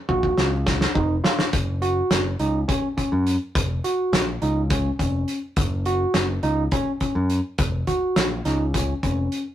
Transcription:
0.09 0.33 A#1 medium
0.09 0.48 F#4 medium
0.09 kick medium
0.23 kick medium
0.38 0.85 C#2 medium
0.38 snare medium
0.66 kick medium
0.66 snare medium
0.81 snare medium
0.95 1.19 F1 medium
0.95 1.15 D#4 medium
0.95 kick medium
1.24 1.43 F4 medium
1.24 snare medium
1.39 snare medium
1.53 2.00 F#1 medium
1.53 kick loud
1.53 closed hi-hat medium
1.82 2.21 F#4 medium
1.82 closed hi-hat medium
2.11 2.34 F#1 medium
2.11 snare medium
2.11 closed hi-hat medium
2.39 2.63 C#2 medium
2.39 2.59 D#4 medium
2.39 closed hi-hat soft
2.68 2.88 C#4 medium
2.68 kick medium
2.68 closed hi-hat medium
2.97 3.36 C#4 medium
2.97 kick medium
2.97 closed hi-hat medium
3.12 3.36 F#2 medium
3.27 closed hi-hat medium
3.55 3.79 F1 medium
3.55 kick loud
3.55 closed hi-hat medium
3.84 4.23 F#4 medium
3.84 closed hi-hat medium
4.13 4.36 A#1 medium
4.13 snare loud
4.13 closed hi-hat medium
4.42 4.89 C#2 medium
4.42 4.61 D#4 medium
4.42 closed hi-hat soft
4.70 4.90 C#4 medium
4.70 kick medium
4.70 closed hi-hat medium
4.99 5.23 F1 medium
4.99 5.38 C#4 medium
4.99 kick medium
4.99 closed hi-hat medium
5.28 closed hi-hat medium
5.56 6.04 F#1 medium
5.56 kick loud
5.56 closed hi-hat medium
5.85 6.25 F#4 medium
5.85 closed hi-hat soft
6.14 6.38 F#1 medium
6.14 snare medium
6.14 closed hi-hat medium
6.43 6.67 C#2 medium
6.43 6.63 D#4 medium
6.43 closed hi-hat soft
6.71 6.91 C#4 medium
6.71 kick medium
6.71 closed hi-hat medium
7.00 7.40 C#4 medium
7.00 kick medium
7.00 closed hi-hat soft
7.15 7.39 F#2 medium
7.30 closed hi-hat medium
7.58 7.82 F1 medium
7.58 kick loud
7.58 closed hi-hat medium
7.87 8.26 F#4 medium
7.87 kick medium
7.87 closed hi-hat soft
8.16 8.40 A#1 medium
8.16 snare medium
8.16 closed hi-hat medium
8.45 8.93 C#2 medium
8.45 8.65 D#4 medium
8.45 snare soft
8.45 closed hi-hat soft
8.74 8.93 C#4 medium
8.74 kick medium
8.74 closed hi-hat medium
9.03 9.27 F1 medium
9.03 9.42 C#4 medium
9.03 kick medium
9.03 closed hi-hat medium
9.32 closed hi-hat soft

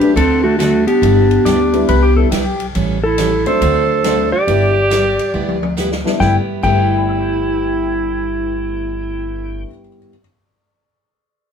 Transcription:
0.00 0.15 F#3 medium
0.00 0.15 A3 medium
0.00 0.15 C4 medium
0.00 0.13 D4 medium
0.00 0.15 D4 medium
0.00 0.12 G4 medium
0.00 0.12 B4 medium
0.00 ride soft
0.16 0.85 D2 loud
0.16 0.38 D3 medium
0.16 0.38 A3 medium
0.16 0.38 C4 medium
0.16 0.42 C4 medium
0.16 0.42 D4 medium
0.16 0.38 F#4 medium
0.16 0.42 A4 medium
0.16 0.39 A4 medium
0.16 ride medium
0.44 0.58 A3 medium
0.44 0.58 D4 medium
0.44 0.58 F#4 medium
0.59 0.71 D3 medium
0.59 0.71 A3 medium
0.59 0.85 A3 medium
0.59 0.71 C4 medium
0.59 0.85 D4 medium
0.59 0.87 F#4 medium
0.59 0.71 F#4 medium
0.59 0.71 A4 medium
0.59 snare medium
0.59 hi-hat pedal medium
0.59 ride medium
0.87 2.28 B3 medium
0.87 2.28 D4 medium
0.87 2.28 G4 medium
0.87 ride soft
1.02 1.37 G1 medium
1.02 1.24 G3 medium
1.02 1.24 B3 medium
1.02 1.25 E4 medium
1.02 1.25 G4 medium
1.02 ride medium
1.31 ride soft
1.45 1.82 D2 medium
1.45 1.57 G3 medium
1.45 1.57 B3 medium
1.45 1.58 E4 medium
1.45 1.58 G4 medium
1.45 1.87 D5 loud
1.45 snare medium
1.45 hi-hat pedal medium
1.45 ride medium
1.73 1.87 G3 medium
1.73 1.87 B3 medium
1.73 1.87 D4 medium
1.73 1.87 E4 medium
1.73 ride soft
1.88 2.25 C2 medium
1.88 2.11 G3 medium
1.88 2.11 B3 medium
1.88 2.11 E4 medium
1.88 2.11 G4 medium
1.88 2.03 B4 medium
1.88 ride medium
2.03 2.16 G4 medium
2.16 2.30 G3 medium
2.16 2.30 B3 medium
2.16 2.30 D4 medium
2.16 2.30 E4 medium
2.16 2.31 A4 medium
2.31 2.68 B1 medium
2.31 2.43 G3 medium
2.31 2.44 B3 medium
2.31 2.44 E4 medium
2.31 2.66 G4 medium
2.31 2.44 G4 medium
2.31 snare medium
2.31 hi-hat pedal medium
2.31 ride medium
2.60 ride soft
2.75 3.44 A1 medium
2.75 2.97 E3 medium
2.75 2.97 G3 medium
2.75 2.97 C#4 medium
2.75 2.97 E4 medium
2.75 2.97 A4 medium
2.75 ride medium
3.04 3.44 E4 medium
3.04 3.48 A4 medium
3.18 3.30 E3 medium
3.18 3.30 G3 medium
3.18 3.30 C#4 medium
3.18 3.30 E4 medium
3.18 3.30 A4 medium
3.18 snare medium
3.18 hi-hat pedal medium
3.18 ride medium
3.46 4.01 F#3 medium
3.46 4.01 A3 medium
3.46 4.02 C4 medium
3.46 4.02 D4 medium
3.46 4.29 A4 medium
3.46 4.29 C5 medium
3.46 ride soft
3.61 4.30 D2 medium
3.61 3.83 D3 medium
3.61 3.83 A3 medium
3.61 3.83 C4 medium
3.61 3.83 F#4 medium
3.61 3.83 A4 medium
3.61 ride medium
4.04 4.16 D3 medium
4.04 4.29 F#3 medium
4.04 4.29 A3 medium
4.04 4.16 A3 medium
4.04 4.30 C4 medium
4.04 4.16 C4 medium
4.04 4.30 D4 medium
4.04 4.16 F#4 medium
4.04 4.16 A4 medium
4.04 snare medium
4.04 hi-hat pedal medium
4.04 ride medium
4.32 5.73 G4 loud
4.32 5.73 D5 loud
4.47 5.16 G1 medium
4.47 4.72 G3 medium
4.47 4.70 G3 medium
4.47 4.73 B3 medium
4.47 4.70 B3 medium
4.47 4.73 D4 medium
4.47 4.73 E4 medium
4.47 4.70 E4 medium
4.47 4.70 G4 medium
4.47 ride medium
4.90 5.02 G3 medium
4.90 5.02 B3 medium
4.90 5.02 E4 medium
4.90 5.03 G4 medium
4.90 snare medium
4.90 hi-hat pedal medium
4.90 ride medium
5.19 ride soft
5.34 6.03 D2 medium
5.34 5.56 G3 medium
5.34 5.56 B3 medium
5.34 5.56 E4 medium
5.34 5.56 G4 medium
5.49 high tom soft
5.63 high tom medium
5.77 5.89 G3 medium
5.77 5.89 B3 medium
5.77 5.89 E4 medium
5.77 5.89 G4 medium
5.77 snare medium
5.77 hi-hat pedal medium
5.91 snare medium
6.04 6.18 G3 medium
6.04 6.18 B3 medium
6.04 6.19 D4 medium
6.04 6.19 E4 medium
6.04 snare medium
6.19 6.36 G1 medium
6.19 6.36 G2 medium
6.19 6.62 G3 medium
6.19 6.37 G3 medium
6.19 6.37 A3 medium
6.19 6.63 B3 medium
6.19 6.37 B3 medium
6.19 6.36 E4 medium
6.19 6.64 E4 medium
6.19 6.65 G4 medium
6.19 6.36 G5 medium
6.19 kick medium
6.19 snare medium
6.62 9.63 G1 medium
6.62 9.65 G2 medium
6.62 9.66 G3 medium
6.62 10.13 G3 medium
6.62 9.67 A3 medium
6.62 10.14 B3 medium
6.62 9.67 B3 medium
6.62 9.63 E4 medium
6.62 10.14 E4 medium
6.62 9.68 E4 medium
6.62 9.62 G4 soft
6.62 10.15 G4 medium
6.62 9.63 G5 medium
6.62 kick medium
6.62 crash medium
6.71 9.70 B4 soft
6.79 9.78 E5 soft
6.88 9.87 G5 soft
6.98 9.97 B5 soft
7.09 10.08 E6 soft
7.20 10.20 G6 soft

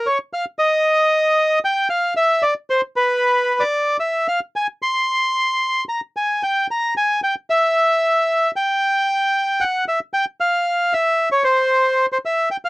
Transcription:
0.06 0.18 C#5 medium
0.33 0.45 F5 medium
0.59 1.59 D#5 medium
1.65 1.88 G5 medium
1.90 2.14 F5 medium
2.17 2.43 E5 medium
2.43 2.54 D5 medium
2.70 2.81 C5 medium
2.96 3.63 B4 medium
3.60 3.97 D5 medium
4.00 4.27 E5 medium
4.28 4.40 F5 medium
4.56 4.67 G#5 medium
4.82 5.84 C6 loud
5.89 6.00 A#5 medium
6.17 6.43 G#5 medium
6.43 6.67 G5 medium
6.71 6.94 A#5 medium
6.97 7.20 G#5 medium
7.23 7.35 G5 medium
7.50 8.51 E5 medium
8.56 9.64 G5 medium
9.61 9.85 F#5 medium
9.88 10.00 E5 medium
10.14 10.25 G5 loud
10.40 10.93 F5 medium
10.93 11.29 E5 medium
11.32 11.43 C#5 medium
11.44 12.06 C5 medium
12.12 12.18 C5 medium
12.25 12.49 E5 medium
12.51 12.57 G5 medium
12.65 12.69 F5 medium

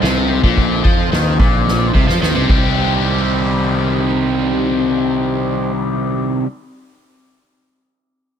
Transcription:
0.00 0.41 C2 medium
0.00 0.43 C3 loud
0.00 2.46 C4 medium
0.00 2.46 D#4 medium
0.00 2.46 A4 medium
0.00 2.46 C5 medium
0.00 snare loud
0.00 crash medium
0.30 crash medium
0.43 0.82 A#1 loud
0.43 0.83 A#2 loud
0.43 kick loud
0.57 kick loud
0.57 crash medium
0.84 1.10 F2 loud
0.84 1.11 F3 loud
0.84 kick loud
0.84 crash medium
1.12 1.38 D#2 medium
1.12 1.39 D#3 loud
1.12 snare loud
1.12 crash medium
1.39 1.91 A#1 medium
1.39 1.94 A#2 loud
1.39 kick loud
1.39 crash medium
1.68 snare medium
1.94 2.08 C2 loud
1.94 2.07 C3 loud
1.94 kick medium
2.08 2.21 F2 medium
2.08 2.21 F3 loud
2.08 snare medium
2.22 2.35 D#2 medium
2.22 2.35 D#3 loud
2.22 snare medium
2.35 2.49 C2 medium
2.35 2.47 C3 loud
2.48 6.43 C2 loud
2.48 6.46 C3 loud
2.48 6.46 D#3 loud
2.48 6.47 G3 medium
2.48 5.73 C4 medium
2.48 6.47 C4 loud
2.48 5.73 D#4 medium
2.48 5.73 G4 medium
2.48 5.72 C5 medium
2.48 kick loud
2.48 crash medium
2.52 6.48 G4 loud

